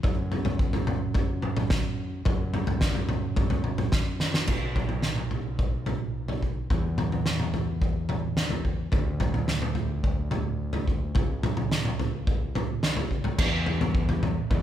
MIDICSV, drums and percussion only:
0, 0, Header, 1, 2, 480
1, 0, Start_track
1, 0, Tempo, 556070
1, 36, Time_signature, 4, 2, 24, 8
1, 12623, End_track
2, 0, Start_track
2, 0, Title_t, "Drums"
2, 29, Note_on_c, 9, 43, 66
2, 35, Note_on_c, 9, 36, 83
2, 115, Note_off_c, 9, 43, 0
2, 122, Note_off_c, 9, 36, 0
2, 273, Note_on_c, 9, 43, 63
2, 359, Note_off_c, 9, 43, 0
2, 388, Note_on_c, 9, 43, 74
2, 474, Note_off_c, 9, 43, 0
2, 512, Note_on_c, 9, 36, 82
2, 598, Note_off_c, 9, 36, 0
2, 632, Note_on_c, 9, 43, 66
2, 718, Note_off_c, 9, 43, 0
2, 751, Note_on_c, 9, 43, 59
2, 751, Note_on_c, 9, 47, 63
2, 838, Note_off_c, 9, 43, 0
2, 838, Note_off_c, 9, 47, 0
2, 988, Note_on_c, 9, 43, 65
2, 993, Note_on_c, 9, 36, 82
2, 1074, Note_off_c, 9, 43, 0
2, 1080, Note_off_c, 9, 36, 0
2, 1229, Note_on_c, 9, 47, 58
2, 1315, Note_off_c, 9, 47, 0
2, 1351, Note_on_c, 9, 43, 71
2, 1351, Note_on_c, 9, 47, 61
2, 1438, Note_off_c, 9, 43, 0
2, 1438, Note_off_c, 9, 47, 0
2, 1469, Note_on_c, 9, 38, 61
2, 1469, Note_on_c, 9, 47, 63
2, 1473, Note_on_c, 9, 36, 91
2, 1555, Note_off_c, 9, 38, 0
2, 1555, Note_off_c, 9, 47, 0
2, 1559, Note_off_c, 9, 36, 0
2, 1945, Note_on_c, 9, 43, 73
2, 1952, Note_on_c, 9, 36, 89
2, 2031, Note_off_c, 9, 43, 0
2, 2038, Note_off_c, 9, 36, 0
2, 2189, Note_on_c, 9, 43, 68
2, 2275, Note_off_c, 9, 43, 0
2, 2306, Note_on_c, 9, 43, 75
2, 2392, Note_off_c, 9, 43, 0
2, 2424, Note_on_c, 9, 38, 65
2, 2431, Note_on_c, 9, 36, 90
2, 2511, Note_off_c, 9, 38, 0
2, 2517, Note_off_c, 9, 36, 0
2, 2547, Note_on_c, 9, 43, 66
2, 2634, Note_off_c, 9, 43, 0
2, 2664, Note_on_c, 9, 43, 62
2, 2664, Note_on_c, 9, 47, 61
2, 2750, Note_off_c, 9, 43, 0
2, 2750, Note_off_c, 9, 47, 0
2, 2904, Note_on_c, 9, 43, 70
2, 2909, Note_on_c, 9, 36, 87
2, 2990, Note_off_c, 9, 43, 0
2, 2996, Note_off_c, 9, 36, 0
2, 3022, Note_on_c, 9, 43, 69
2, 3108, Note_off_c, 9, 43, 0
2, 3141, Note_on_c, 9, 47, 61
2, 3227, Note_off_c, 9, 47, 0
2, 3265, Note_on_c, 9, 43, 68
2, 3265, Note_on_c, 9, 47, 63
2, 3351, Note_off_c, 9, 43, 0
2, 3351, Note_off_c, 9, 47, 0
2, 3384, Note_on_c, 9, 38, 61
2, 3389, Note_on_c, 9, 36, 89
2, 3470, Note_off_c, 9, 38, 0
2, 3475, Note_off_c, 9, 36, 0
2, 3626, Note_on_c, 9, 38, 50
2, 3712, Note_off_c, 9, 38, 0
2, 3747, Note_on_c, 9, 38, 68
2, 3834, Note_off_c, 9, 38, 0
2, 3862, Note_on_c, 9, 43, 60
2, 3862, Note_on_c, 9, 49, 69
2, 3868, Note_on_c, 9, 36, 72
2, 3948, Note_off_c, 9, 43, 0
2, 3948, Note_off_c, 9, 49, 0
2, 3954, Note_off_c, 9, 36, 0
2, 4107, Note_on_c, 9, 36, 54
2, 4107, Note_on_c, 9, 43, 59
2, 4107, Note_on_c, 9, 47, 56
2, 4193, Note_off_c, 9, 36, 0
2, 4193, Note_off_c, 9, 43, 0
2, 4193, Note_off_c, 9, 47, 0
2, 4219, Note_on_c, 9, 47, 59
2, 4306, Note_off_c, 9, 47, 0
2, 4337, Note_on_c, 9, 38, 55
2, 4423, Note_off_c, 9, 38, 0
2, 4456, Note_on_c, 9, 47, 54
2, 4543, Note_off_c, 9, 47, 0
2, 4583, Note_on_c, 9, 43, 53
2, 4669, Note_off_c, 9, 43, 0
2, 4824, Note_on_c, 9, 36, 81
2, 4911, Note_off_c, 9, 36, 0
2, 5061, Note_on_c, 9, 43, 58
2, 5061, Note_on_c, 9, 47, 51
2, 5147, Note_off_c, 9, 43, 0
2, 5147, Note_off_c, 9, 47, 0
2, 5425, Note_on_c, 9, 43, 58
2, 5511, Note_off_c, 9, 43, 0
2, 5546, Note_on_c, 9, 36, 52
2, 5632, Note_off_c, 9, 36, 0
2, 5786, Note_on_c, 9, 36, 70
2, 5787, Note_on_c, 9, 43, 57
2, 5872, Note_off_c, 9, 36, 0
2, 5873, Note_off_c, 9, 43, 0
2, 6024, Note_on_c, 9, 43, 62
2, 6024, Note_on_c, 9, 47, 61
2, 6111, Note_off_c, 9, 43, 0
2, 6111, Note_off_c, 9, 47, 0
2, 6149, Note_on_c, 9, 47, 60
2, 6235, Note_off_c, 9, 47, 0
2, 6264, Note_on_c, 9, 38, 60
2, 6350, Note_off_c, 9, 38, 0
2, 6384, Note_on_c, 9, 47, 62
2, 6470, Note_off_c, 9, 47, 0
2, 6506, Note_on_c, 9, 43, 62
2, 6593, Note_off_c, 9, 43, 0
2, 6746, Note_on_c, 9, 36, 74
2, 6833, Note_off_c, 9, 36, 0
2, 6982, Note_on_c, 9, 43, 57
2, 6982, Note_on_c, 9, 47, 53
2, 7068, Note_off_c, 9, 43, 0
2, 7068, Note_off_c, 9, 47, 0
2, 7223, Note_on_c, 9, 38, 62
2, 7309, Note_off_c, 9, 38, 0
2, 7339, Note_on_c, 9, 43, 60
2, 7426, Note_off_c, 9, 43, 0
2, 7465, Note_on_c, 9, 36, 54
2, 7551, Note_off_c, 9, 36, 0
2, 7698, Note_on_c, 9, 43, 64
2, 7705, Note_on_c, 9, 36, 86
2, 7784, Note_off_c, 9, 43, 0
2, 7791, Note_off_c, 9, 36, 0
2, 7941, Note_on_c, 9, 43, 74
2, 7941, Note_on_c, 9, 47, 63
2, 7945, Note_on_c, 9, 36, 56
2, 8028, Note_off_c, 9, 43, 0
2, 8028, Note_off_c, 9, 47, 0
2, 8032, Note_off_c, 9, 36, 0
2, 8063, Note_on_c, 9, 47, 66
2, 8149, Note_off_c, 9, 47, 0
2, 8182, Note_on_c, 9, 38, 58
2, 8269, Note_off_c, 9, 38, 0
2, 8303, Note_on_c, 9, 47, 68
2, 8389, Note_off_c, 9, 47, 0
2, 8417, Note_on_c, 9, 43, 63
2, 8503, Note_off_c, 9, 43, 0
2, 8665, Note_on_c, 9, 36, 79
2, 8751, Note_off_c, 9, 36, 0
2, 8900, Note_on_c, 9, 43, 62
2, 8900, Note_on_c, 9, 47, 54
2, 8986, Note_off_c, 9, 43, 0
2, 8986, Note_off_c, 9, 47, 0
2, 9261, Note_on_c, 9, 43, 64
2, 9347, Note_off_c, 9, 43, 0
2, 9387, Note_on_c, 9, 36, 61
2, 9474, Note_off_c, 9, 36, 0
2, 9623, Note_on_c, 9, 43, 63
2, 9629, Note_on_c, 9, 36, 81
2, 9709, Note_off_c, 9, 43, 0
2, 9716, Note_off_c, 9, 36, 0
2, 9870, Note_on_c, 9, 43, 69
2, 9870, Note_on_c, 9, 47, 62
2, 9956, Note_off_c, 9, 43, 0
2, 9956, Note_off_c, 9, 47, 0
2, 9987, Note_on_c, 9, 47, 71
2, 10073, Note_off_c, 9, 47, 0
2, 10113, Note_on_c, 9, 38, 62
2, 10199, Note_off_c, 9, 38, 0
2, 10232, Note_on_c, 9, 47, 66
2, 10318, Note_off_c, 9, 47, 0
2, 10354, Note_on_c, 9, 43, 66
2, 10440, Note_off_c, 9, 43, 0
2, 10593, Note_on_c, 9, 36, 81
2, 10680, Note_off_c, 9, 36, 0
2, 10836, Note_on_c, 9, 43, 61
2, 10836, Note_on_c, 9, 47, 62
2, 10923, Note_off_c, 9, 43, 0
2, 10923, Note_off_c, 9, 47, 0
2, 11074, Note_on_c, 9, 38, 64
2, 11160, Note_off_c, 9, 38, 0
2, 11192, Note_on_c, 9, 43, 66
2, 11278, Note_off_c, 9, 43, 0
2, 11314, Note_on_c, 9, 36, 46
2, 11401, Note_off_c, 9, 36, 0
2, 11430, Note_on_c, 9, 43, 63
2, 11516, Note_off_c, 9, 43, 0
2, 11553, Note_on_c, 9, 43, 65
2, 11553, Note_on_c, 9, 49, 79
2, 11555, Note_on_c, 9, 36, 87
2, 11640, Note_off_c, 9, 43, 0
2, 11640, Note_off_c, 9, 49, 0
2, 11641, Note_off_c, 9, 36, 0
2, 11795, Note_on_c, 9, 43, 60
2, 11881, Note_off_c, 9, 43, 0
2, 11921, Note_on_c, 9, 43, 76
2, 12008, Note_off_c, 9, 43, 0
2, 12038, Note_on_c, 9, 36, 82
2, 12125, Note_off_c, 9, 36, 0
2, 12161, Note_on_c, 9, 43, 64
2, 12247, Note_off_c, 9, 43, 0
2, 12281, Note_on_c, 9, 43, 64
2, 12281, Note_on_c, 9, 47, 60
2, 12368, Note_off_c, 9, 43, 0
2, 12368, Note_off_c, 9, 47, 0
2, 12522, Note_on_c, 9, 36, 80
2, 12525, Note_on_c, 9, 43, 65
2, 12609, Note_off_c, 9, 36, 0
2, 12612, Note_off_c, 9, 43, 0
2, 12623, End_track
0, 0, End_of_file